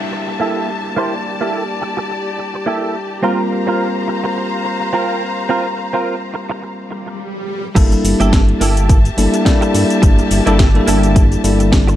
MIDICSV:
0, 0, Header, 1, 9, 480
1, 0, Start_track
1, 0, Tempo, 566038
1, 823, Time_signature, 4, 2, 24, 8
1, 10145, End_track
2, 0, Start_track
2, 0, Title_t, "String section"
2, 0, Program_c, 0, 48
2, 0, Note_on_c, 0, 58, 67
2, 0, Note_on_c, 0, 67, 70
2, 0, Note_on_c, 0, 76, 66
2, 0, Note_on_c, 0, 81, 80
2, 804, Note_off_c, 0, 76, 0
2, 822, Note_on_c, 0, 74, 68
2, 2709, Note_off_c, 0, 58, 0
2, 2709, Note_off_c, 0, 81, 0
2, 2723, Note_off_c, 0, 74, 0
2, 2746, Note_on_c, 0, 82, 83
2, 2747, Note_on_c, 0, 77, 68
2, 2748, Note_on_c, 0, 72, 72
2, 6069, Note_off_c, 0, 67, 0
2, 6071, Note_off_c, 0, 77, 0
2, 6071, Note_off_c, 0, 82, 0
2, 6072, Note_off_c, 0, 72, 0
2, 6580, Note_on_c, 0, 81, 92
2, 6581, Note_on_c, 0, 67, 88
2, 6581, Note_on_c, 0, 76, 76
2, 6582, Note_on_c, 0, 58, 76
2, 10145, Note_off_c, 0, 58, 0
2, 10145, Note_off_c, 0, 67, 0
2, 10145, Note_off_c, 0, 76, 0
2, 10145, Note_off_c, 0, 81, 0
2, 10145, End_track
3, 0, Start_track
3, 0, Title_t, "Clean electric guitar"
3, 0, Program_c, 1, 27
3, 336, Note_on_c, 1, 58, 75
3, 344, Note_on_c, 1, 64, 63
3, 346, Note_on_c, 1, 67, 68
3, 350, Note_on_c, 1, 69, 82
3, 581, Note_off_c, 1, 58, 0
3, 582, Note_off_c, 1, 64, 0
3, 584, Note_off_c, 1, 67, 0
3, 586, Note_off_c, 1, 69, 0
3, 818, Note_on_c, 1, 58, 104
3, 824, Note_on_c, 1, 64, 83
3, 826, Note_on_c, 1, 67, 91
3, 830, Note_on_c, 1, 72, 109
3, 955, Note_off_c, 1, 58, 0
3, 957, Note_off_c, 1, 64, 0
3, 959, Note_off_c, 1, 67, 0
3, 961, Note_off_c, 1, 72, 0
3, 1193, Note_on_c, 1, 58, 77
3, 1196, Note_on_c, 1, 64, 70
3, 1201, Note_on_c, 1, 67, 69
3, 1205, Note_on_c, 1, 69, 82
3, 1368, Note_off_c, 1, 58, 0
3, 1370, Note_off_c, 1, 64, 0
3, 1372, Note_off_c, 1, 67, 0
3, 1374, Note_off_c, 1, 69, 0
3, 2257, Note_on_c, 1, 58, 76
3, 2260, Note_on_c, 1, 64, 67
3, 2268, Note_on_c, 1, 67, 68
3, 2270, Note_on_c, 1, 69, 85
3, 2500, Note_off_c, 1, 58, 0
3, 2502, Note_off_c, 1, 64, 0
3, 2504, Note_off_c, 1, 67, 0
3, 2506, Note_off_c, 1, 69, 0
3, 2736, Note_on_c, 1, 60, 98
3, 2742, Note_on_c, 1, 65, 94
3, 2749, Note_on_c, 1, 70, 116
3, 2874, Note_off_c, 1, 60, 0
3, 2876, Note_off_c, 1, 65, 0
3, 2880, Note_off_c, 1, 70, 0
3, 3112, Note_on_c, 1, 60, 81
3, 3118, Note_on_c, 1, 65, 72
3, 3125, Note_on_c, 1, 70, 89
3, 3287, Note_off_c, 1, 60, 0
3, 3290, Note_off_c, 1, 65, 0
3, 3294, Note_off_c, 1, 70, 0
3, 4178, Note_on_c, 1, 60, 74
3, 4184, Note_on_c, 1, 65, 71
3, 4190, Note_on_c, 1, 70, 86
3, 4420, Note_off_c, 1, 60, 0
3, 4423, Note_off_c, 1, 65, 0
3, 4426, Note_off_c, 1, 70, 0
3, 4656, Note_on_c, 1, 60, 104
3, 4662, Note_on_c, 1, 65, 95
3, 4667, Note_on_c, 1, 70, 116
3, 4793, Note_off_c, 1, 60, 0
3, 4797, Note_off_c, 1, 65, 0
3, 4799, Note_off_c, 1, 70, 0
3, 5030, Note_on_c, 1, 60, 79
3, 5036, Note_on_c, 1, 65, 71
3, 5042, Note_on_c, 1, 70, 87
3, 5206, Note_off_c, 1, 60, 0
3, 5209, Note_off_c, 1, 65, 0
3, 5212, Note_off_c, 1, 70, 0
3, 6952, Note_on_c, 1, 58, 85
3, 6956, Note_on_c, 1, 64, 79
3, 6960, Note_on_c, 1, 67, 78
3, 6963, Note_on_c, 1, 69, 95
3, 7127, Note_off_c, 1, 58, 0
3, 7129, Note_off_c, 1, 64, 0
3, 7131, Note_off_c, 1, 67, 0
3, 7133, Note_off_c, 1, 69, 0
3, 7297, Note_on_c, 1, 58, 82
3, 7301, Note_on_c, 1, 64, 75
3, 7305, Note_on_c, 1, 67, 74
3, 7310, Note_on_c, 1, 69, 87
3, 7607, Note_off_c, 1, 58, 0
3, 7609, Note_off_c, 1, 64, 0
3, 7611, Note_off_c, 1, 67, 0
3, 7613, Note_off_c, 1, 69, 0
3, 8871, Note_on_c, 1, 58, 83
3, 8874, Note_on_c, 1, 64, 77
3, 8880, Note_on_c, 1, 67, 70
3, 8882, Note_on_c, 1, 69, 92
3, 9047, Note_off_c, 1, 58, 0
3, 9049, Note_off_c, 1, 64, 0
3, 9050, Note_off_c, 1, 67, 0
3, 9052, Note_off_c, 1, 69, 0
3, 9216, Note_on_c, 1, 58, 82
3, 9220, Note_on_c, 1, 64, 78
3, 9225, Note_on_c, 1, 67, 76
3, 9229, Note_on_c, 1, 69, 89
3, 9527, Note_off_c, 1, 58, 0
3, 9529, Note_off_c, 1, 64, 0
3, 9531, Note_off_c, 1, 67, 0
3, 9533, Note_off_c, 1, 69, 0
3, 10145, End_track
4, 0, Start_track
4, 0, Title_t, "Tine electric piano"
4, 0, Program_c, 2, 4
4, 0, Note_on_c, 2, 55, 66
4, 0, Note_on_c, 2, 58, 61
4, 0, Note_on_c, 2, 62, 61
4, 0, Note_on_c, 2, 64, 60
4, 0, Note_on_c, 2, 81, 73
4, 2712, Note_off_c, 2, 55, 0
4, 2714, Note_off_c, 2, 58, 0
4, 2716, Note_off_c, 2, 62, 0
4, 2718, Note_off_c, 2, 64, 0
4, 2721, Note_off_c, 2, 81, 0
4, 2732, Note_on_c, 2, 55, 69
4, 2737, Note_on_c, 2, 58, 63
4, 2740, Note_on_c, 2, 60, 65
4, 2745, Note_on_c, 2, 65, 66
4, 2749, Note_on_c, 2, 70, 77
4, 6097, Note_off_c, 2, 55, 0
4, 6100, Note_off_c, 2, 58, 0
4, 6101, Note_off_c, 2, 60, 0
4, 6104, Note_off_c, 2, 65, 0
4, 6106, Note_off_c, 2, 70, 0
4, 6571, Note_on_c, 2, 55, 98
4, 6576, Note_on_c, 2, 58, 88
4, 6580, Note_on_c, 2, 62, 91
4, 6584, Note_on_c, 2, 64, 89
4, 6588, Note_on_c, 2, 69, 106
4, 7297, Note_off_c, 2, 55, 0
4, 7299, Note_off_c, 2, 58, 0
4, 7301, Note_off_c, 2, 62, 0
4, 7304, Note_off_c, 2, 64, 0
4, 7305, Note_off_c, 2, 69, 0
4, 7777, Note_on_c, 2, 55, 79
4, 7779, Note_on_c, 2, 58, 72
4, 7782, Note_on_c, 2, 62, 73
4, 7783, Note_on_c, 2, 64, 76
4, 7786, Note_on_c, 2, 69, 85
4, 7995, Note_off_c, 2, 55, 0
4, 7995, Note_off_c, 2, 58, 0
4, 7997, Note_off_c, 2, 62, 0
4, 7998, Note_off_c, 2, 64, 0
4, 7999, Note_off_c, 2, 69, 0
4, 8014, Note_on_c, 2, 55, 100
4, 8018, Note_on_c, 2, 58, 91
4, 8023, Note_on_c, 2, 62, 92
4, 8026, Note_on_c, 2, 64, 94
4, 8030, Note_on_c, 2, 69, 109
4, 8840, Note_off_c, 2, 55, 0
4, 8842, Note_off_c, 2, 58, 0
4, 8845, Note_off_c, 2, 62, 0
4, 8846, Note_off_c, 2, 64, 0
4, 8848, Note_off_c, 2, 69, 0
4, 8872, Note_on_c, 2, 55, 94
4, 8875, Note_on_c, 2, 58, 86
4, 8875, Note_on_c, 2, 62, 86
4, 8878, Note_on_c, 2, 64, 85
4, 8880, Note_on_c, 2, 69, 107
4, 8986, Note_off_c, 2, 55, 0
4, 8987, Note_off_c, 2, 58, 0
4, 8987, Note_off_c, 2, 62, 0
4, 8989, Note_off_c, 2, 64, 0
4, 8990, Note_off_c, 2, 69, 0
4, 9109, Note_on_c, 2, 55, 99
4, 9114, Note_on_c, 2, 58, 85
4, 9118, Note_on_c, 2, 62, 89
4, 9122, Note_on_c, 2, 64, 88
4, 9127, Note_on_c, 2, 69, 102
4, 9674, Note_off_c, 2, 55, 0
4, 9676, Note_off_c, 2, 58, 0
4, 9678, Note_off_c, 2, 62, 0
4, 9680, Note_off_c, 2, 64, 0
4, 9683, Note_off_c, 2, 69, 0
4, 9699, Note_on_c, 2, 55, 75
4, 9701, Note_on_c, 2, 58, 65
4, 9702, Note_on_c, 2, 62, 68
4, 9706, Note_on_c, 2, 64, 70
4, 9707, Note_on_c, 2, 69, 84
4, 10145, Note_off_c, 2, 55, 0
4, 10145, Note_off_c, 2, 58, 0
4, 10145, Note_off_c, 2, 62, 0
4, 10145, Note_off_c, 2, 64, 0
4, 10145, Note_off_c, 2, 69, 0
4, 10145, End_track
5, 0, Start_track
5, 0, Title_t, "Analog synth bass"
5, 0, Program_c, 3, 38
5, 6582, Note_on_c, 3, 31, 96
5, 6743, Note_off_c, 3, 31, 0
5, 6821, Note_on_c, 3, 31, 80
5, 6906, Note_off_c, 3, 31, 0
5, 6956, Note_on_c, 3, 31, 91
5, 7239, Note_off_c, 3, 31, 0
5, 7300, Note_on_c, 3, 31, 104
5, 7718, Note_off_c, 3, 31, 0
5, 7782, Note_on_c, 3, 31, 92
5, 7866, Note_off_c, 3, 31, 0
5, 8262, Note_on_c, 3, 43, 89
5, 8346, Note_off_c, 3, 43, 0
5, 8503, Note_on_c, 3, 31, 100
5, 8664, Note_off_c, 3, 31, 0
5, 8743, Note_on_c, 3, 31, 78
5, 8827, Note_off_c, 3, 31, 0
5, 8877, Note_on_c, 3, 31, 93
5, 9159, Note_off_c, 3, 31, 0
5, 9224, Note_on_c, 3, 31, 100
5, 9640, Note_off_c, 3, 31, 0
5, 9702, Note_on_c, 3, 31, 85
5, 10145, Note_off_c, 3, 31, 0
5, 10145, End_track
6, 0, Start_track
6, 0, Title_t, "Downlifter"
6, 0, Program_c, 4, 103
6, 0, Note_on_c, 4, 60, 64
6, 2743, Note_off_c, 4, 60, 0
6, 10145, End_track
7, 0, Start_track
7, 0, Title_t, "Swell"
7, 0, Program_c, 5, 103
7, 5622, Note_on_c, 5, 60, 70
7, 6583, Note_off_c, 5, 60, 0
7, 10145, End_track
8, 0, Start_track
8, 0, Title_t, "Muted clean electric guitar strokes"
8, 98, Note_on_c, 9, 29, 28
8, 182, Note_off_c, 9, 29, 0
8, 232, Note_on_c, 9, 29, 28
8, 316, Note_off_c, 9, 29, 0
8, 1059, Note_on_c, 9, 29, 27
8, 1144, Note_off_c, 9, 29, 0
8, 1539, Note_on_c, 9, 29, 72
8, 1624, Note_off_c, 9, 29, 0
8, 1672, Note_on_c, 9, 29, 97
8, 1756, Note_off_c, 9, 29, 0
8, 1779, Note_on_c, 9, 29, 30
8, 1864, Note_off_c, 9, 29, 0
8, 2019, Note_on_c, 9, 29, 29
8, 2104, Note_off_c, 9, 29, 0
8, 2153, Note_on_c, 9, 29, 29
8, 2238, Note_off_c, 9, 29, 0
8, 2979, Note_on_c, 9, 29, 29
8, 3064, Note_off_c, 9, 29, 0
8, 3458, Note_on_c, 9, 29, 73
8, 3543, Note_off_c, 9, 29, 0
8, 3593, Note_on_c, 9, 29, 99
8, 3678, Note_off_c, 9, 29, 0
8, 3700, Note_on_c, 9, 29, 30
8, 3785, Note_off_c, 9, 29, 0
8, 3938, Note_on_c, 9, 29, 29
8, 4023, Note_off_c, 9, 29, 0
8, 4073, Note_on_c, 9, 29, 30
8, 4158, Note_off_c, 9, 29, 0
8, 4896, Note_on_c, 9, 29, 29
8, 4980, Note_off_c, 9, 29, 0
8, 5374, Note_on_c, 9, 29, 77
8, 5458, Note_off_c, 9, 29, 0
8, 5508, Note_on_c, 9, 29, 104
8, 5593, Note_off_c, 9, 29, 0
8, 5615, Note_on_c, 9, 29, 30
8, 5700, Note_off_c, 9, 29, 0
8, 5856, Note_on_c, 9, 29, 29
8, 5941, Note_off_c, 9, 29, 0
8, 5990, Note_on_c, 9, 29, 30
8, 6075, Note_off_c, 9, 29, 0
8, 6575, Note_on_c, 9, 29, 114
8, 6660, Note_off_c, 9, 29, 0
8, 6709, Note_on_c, 9, 29, 32
8, 6794, Note_off_c, 9, 29, 0
8, 7911, Note_on_c, 9, 29, 32
8, 7996, Note_off_c, 9, 29, 0
8, 8016, Note_on_c, 9, 29, 86
8, 8101, Note_off_c, 9, 29, 0
8, 8151, Note_on_c, 9, 29, 108
8, 8236, Note_off_c, 9, 29, 0
8, 8257, Note_on_c, 9, 29, 33
8, 8342, Note_off_c, 9, 29, 0
8, 8496, Note_on_c, 9, 29, 114
8, 8581, Note_off_c, 9, 29, 0
8, 8629, Note_on_c, 9, 29, 33
8, 8714, Note_off_c, 9, 29, 0
8, 9830, Note_on_c, 9, 29, 33
8, 9915, Note_off_c, 9, 29, 0
8, 9938, Note_on_c, 9, 29, 86
8, 10023, Note_off_c, 9, 29, 0
8, 10070, Note_on_c, 9, 29, 109
8, 10145, Note_off_c, 9, 29, 0
8, 10145, End_track
9, 0, Start_track
9, 0, Title_t, "Drums"
9, 6581, Note_on_c, 9, 36, 111
9, 6583, Note_on_c, 9, 42, 55
9, 6583, Note_on_c, 9, 49, 103
9, 6586, Note_on_c, 9, 82, 42
9, 6666, Note_off_c, 9, 36, 0
9, 6667, Note_off_c, 9, 42, 0
9, 6667, Note_off_c, 9, 49, 0
9, 6671, Note_off_c, 9, 82, 0
9, 6716, Note_on_c, 9, 42, 29
9, 6720, Note_on_c, 9, 82, 31
9, 6801, Note_off_c, 9, 42, 0
9, 6804, Note_off_c, 9, 82, 0
9, 6823, Note_on_c, 9, 46, 100
9, 6826, Note_on_c, 9, 82, 77
9, 6907, Note_off_c, 9, 46, 0
9, 6911, Note_off_c, 9, 82, 0
9, 6957, Note_on_c, 9, 42, 53
9, 6961, Note_on_c, 9, 82, 33
9, 7042, Note_off_c, 9, 42, 0
9, 7046, Note_off_c, 9, 82, 0
9, 7062, Note_on_c, 9, 36, 104
9, 7062, Note_on_c, 9, 38, 123
9, 7063, Note_on_c, 9, 42, 55
9, 7066, Note_on_c, 9, 82, 43
9, 7146, Note_off_c, 9, 36, 0
9, 7147, Note_off_c, 9, 38, 0
9, 7147, Note_off_c, 9, 42, 0
9, 7151, Note_off_c, 9, 82, 0
9, 7196, Note_on_c, 9, 42, 27
9, 7280, Note_off_c, 9, 42, 0
9, 7302, Note_on_c, 9, 46, 106
9, 7306, Note_on_c, 9, 82, 78
9, 7387, Note_off_c, 9, 46, 0
9, 7390, Note_off_c, 9, 82, 0
9, 7437, Note_on_c, 9, 42, 56
9, 7441, Note_on_c, 9, 82, 35
9, 7522, Note_off_c, 9, 42, 0
9, 7526, Note_off_c, 9, 82, 0
9, 7542, Note_on_c, 9, 36, 120
9, 7542, Note_on_c, 9, 42, 55
9, 7546, Note_on_c, 9, 82, 44
9, 7627, Note_off_c, 9, 36, 0
9, 7627, Note_off_c, 9, 42, 0
9, 7630, Note_off_c, 9, 82, 0
9, 7676, Note_on_c, 9, 42, 28
9, 7680, Note_on_c, 9, 82, 31
9, 7761, Note_off_c, 9, 42, 0
9, 7764, Note_off_c, 9, 82, 0
9, 7783, Note_on_c, 9, 46, 103
9, 7786, Note_on_c, 9, 82, 76
9, 7867, Note_off_c, 9, 46, 0
9, 7871, Note_off_c, 9, 82, 0
9, 7917, Note_on_c, 9, 42, 53
9, 7920, Note_on_c, 9, 82, 33
9, 8002, Note_off_c, 9, 42, 0
9, 8005, Note_off_c, 9, 82, 0
9, 8022, Note_on_c, 9, 36, 109
9, 8023, Note_on_c, 9, 38, 117
9, 8023, Note_on_c, 9, 42, 53
9, 8027, Note_on_c, 9, 82, 44
9, 8107, Note_off_c, 9, 36, 0
9, 8108, Note_off_c, 9, 38, 0
9, 8108, Note_off_c, 9, 42, 0
9, 8112, Note_off_c, 9, 82, 0
9, 8158, Note_on_c, 9, 42, 27
9, 8161, Note_on_c, 9, 82, 31
9, 8243, Note_off_c, 9, 42, 0
9, 8246, Note_off_c, 9, 82, 0
9, 8263, Note_on_c, 9, 46, 100
9, 8267, Note_on_c, 9, 82, 76
9, 8348, Note_off_c, 9, 46, 0
9, 8352, Note_off_c, 9, 82, 0
9, 8398, Note_on_c, 9, 42, 55
9, 8401, Note_on_c, 9, 82, 34
9, 8483, Note_off_c, 9, 42, 0
9, 8486, Note_off_c, 9, 82, 0
9, 8503, Note_on_c, 9, 36, 122
9, 8503, Note_on_c, 9, 42, 54
9, 8506, Note_on_c, 9, 82, 42
9, 8587, Note_off_c, 9, 36, 0
9, 8587, Note_off_c, 9, 42, 0
9, 8591, Note_off_c, 9, 82, 0
9, 8637, Note_on_c, 9, 42, 27
9, 8641, Note_on_c, 9, 82, 30
9, 8722, Note_off_c, 9, 42, 0
9, 8725, Note_off_c, 9, 82, 0
9, 8741, Note_on_c, 9, 46, 108
9, 8745, Note_on_c, 9, 82, 70
9, 8826, Note_off_c, 9, 46, 0
9, 8830, Note_off_c, 9, 82, 0
9, 8877, Note_on_c, 9, 42, 53
9, 8881, Note_on_c, 9, 82, 31
9, 8962, Note_off_c, 9, 42, 0
9, 8965, Note_off_c, 9, 82, 0
9, 8982, Note_on_c, 9, 38, 122
9, 8982, Note_on_c, 9, 42, 54
9, 8983, Note_on_c, 9, 36, 110
9, 8985, Note_on_c, 9, 82, 43
9, 9067, Note_off_c, 9, 36, 0
9, 9067, Note_off_c, 9, 38, 0
9, 9067, Note_off_c, 9, 42, 0
9, 9070, Note_off_c, 9, 82, 0
9, 9117, Note_on_c, 9, 42, 25
9, 9202, Note_off_c, 9, 42, 0
9, 9222, Note_on_c, 9, 46, 108
9, 9225, Note_on_c, 9, 82, 74
9, 9307, Note_off_c, 9, 46, 0
9, 9310, Note_off_c, 9, 82, 0
9, 9357, Note_on_c, 9, 42, 54
9, 9360, Note_on_c, 9, 82, 33
9, 9442, Note_off_c, 9, 42, 0
9, 9445, Note_off_c, 9, 82, 0
9, 9463, Note_on_c, 9, 36, 125
9, 9463, Note_on_c, 9, 42, 53
9, 9466, Note_on_c, 9, 82, 43
9, 9547, Note_off_c, 9, 42, 0
9, 9548, Note_off_c, 9, 36, 0
9, 9551, Note_off_c, 9, 82, 0
9, 9597, Note_on_c, 9, 42, 27
9, 9600, Note_on_c, 9, 82, 30
9, 9682, Note_off_c, 9, 42, 0
9, 9685, Note_off_c, 9, 82, 0
9, 9703, Note_on_c, 9, 46, 107
9, 9706, Note_on_c, 9, 82, 74
9, 9787, Note_off_c, 9, 46, 0
9, 9791, Note_off_c, 9, 82, 0
9, 9838, Note_on_c, 9, 42, 54
9, 9841, Note_on_c, 9, 82, 33
9, 9922, Note_off_c, 9, 42, 0
9, 9926, Note_off_c, 9, 82, 0
9, 9943, Note_on_c, 9, 36, 113
9, 9943, Note_on_c, 9, 38, 125
9, 9943, Note_on_c, 9, 42, 54
9, 9947, Note_on_c, 9, 82, 42
9, 10028, Note_off_c, 9, 36, 0
9, 10028, Note_off_c, 9, 38, 0
9, 10028, Note_off_c, 9, 42, 0
9, 10031, Note_off_c, 9, 82, 0
9, 10077, Note_on_c, 9, 42, 26
9, 10081, Note_on_c, 9, 82, 29
9, 10145, Note_off_c, 9, 42, 0
9, 10145, Note_off_c, 9, 82, 0
9, 10145, End_track
0, 0, End_of_file